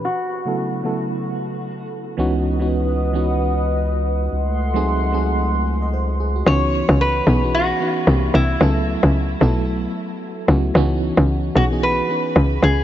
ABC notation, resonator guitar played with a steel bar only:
X:1
M:4/4
L:1/8
Q:"Swing 16ths" 1/4=112
K:C#m
V:1 name="Resonator guitar played with a steel bar"
F6- F z | z8 | z8 | c2 B2 F3 E- |
E4- E z3 | z3 F B3 G |]